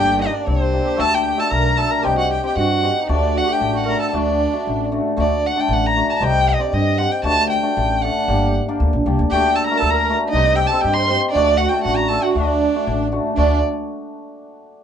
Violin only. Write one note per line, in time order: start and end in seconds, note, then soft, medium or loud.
0.00 0.19 G5 loud
0.22 0.36 D#5 medium
0.35 0.49 D5 medium
0.48 1.02 C5 loud
1.00 1.16 A5 loud
1.15 1.41 G5 loud
1.40 1.54 A5 loud
1.52 1.79 A#5 loud
1.77 1.93 A5 medium
1.91 2.07 A#5 medium
2.05 2.18 G5 loud
2.18 2.30 F#5 medium
2.33 2.44 G5 medium
2.46 2.57 G5 medium
2.58 3.06 F#5 loud
3.10 3.39 D5 loud
3.38 3.54 F#5 loud
3.52 3.73 G5 medium
3.73 3.87 F#5 medium
3.73 3.77 G5 medium
3.87 4.00 A#5 medium
4.01 4.12 A5 medium
4.12 4.87 D5 loud
5.21 5.48 D5 loud
5.46 5.61 F#5 loud
5.60 5.74 G5 medium
5.72 5.88 F#5 loud
5.86 6.09 A#5 loud
6.10 6.12 A5 medium
6.10 6.18 A#5 medium
6.16 6.25 A5 medium
6.24 6.50 G5 loud
6.49 6.62 D#5 loud
6.61 6.75 D5 medium
6.74 7.00 D#5 medium
6.99 7.13 F#5 loud
7.12 7.24 G5 medium
7.24 7.48 A5 loud
7.50 8.04 G5 medium
8.02 8.53 F#5 medium
9.31 9.57 G5 loud
9.56 9.66 A5 medium
9.67 9.79 A#5 medium
9.77 9.92 A5 loud
9.90 10.18 A#5 medium
10.28 10.57 D#5 loud
10.56 10.68 G5 loud
10.67 10.83 A5 medium
10.81 10.95 G5 loud
10.94 11.20 C6 loud
11.31 11.59 D5 loud
11.57 11.70 F#5 loud
11.69 11.83 G5 medium
11.84 11.98 F#5 medium
11.97 12.09 A#5 medium
12.08 12.25 A5 loud
12.23 12.33 F#5 medium
12.34 13.07 D5 medium
13.37 13.61 D5 loud